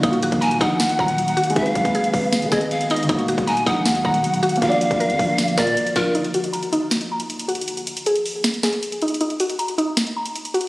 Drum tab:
HH |x--x--x--x--x--x--x-----x--x-----x--x--x--x-x-x-|x--x--x--x--x--x--o-----x--x-----x--x--x--x-x-x-|x--x--x--x--x--x--x-----x--x-----x--x--x--x-x-x-|x--x--x--x--x--x--o-----x--x-----x--x--x--x-----|
SD |------------------------o-----------------------|------------------------o-----o-----------------|------------------------o-----------------------|------------------------o-----o-----------------|
BD |o--------o--------o-----------o-----------------|o-----o--o--------o-----------o-----------------|o--------o--------o-----------o-----------------|o--------o--------o-----------o-----------o-----|

HH |x--x--x--x--x--x--x-----x--x-----x--x--x--x-x-x-|x--x--x--x--x--x--o-----x--x-----x--x--x--x-x-x-|x--x--x--x--x--x--x-----x--x-----x--x--x--x-x---|
SD |------------------------o-----------------------|------------------------o-----o-----------------|------------------------o-----------------------|
BD |------------------------------------------------|------------------------------------------------|------------------------------------------------|